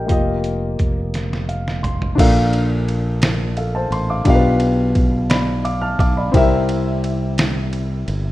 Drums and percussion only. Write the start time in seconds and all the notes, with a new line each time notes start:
0.09 kick, closed hi-hat
0.44 closed hi-hat
0.79 kick, closed hi-hat
1.14 snare, closed hi-hat
1.33 snare
1.49 closed hi-hat
1.68 snare
1.84 closed hi-hat, floor tom
2.02 floor tom
2.18 kick, crash, ride
2.53 ride
2.88 ride
3.22 snare, ride
3.57 ride
3.92 ride
4.25 kick, ride
4.60 ride
4.95 kick, ride
5.30 snare, ride
5.65 ride
5.99 kick, ride
6.34 kick, ride
6.69 ride
7.04 ride
7.38 snare, ride
7.73 ride
8.08 ride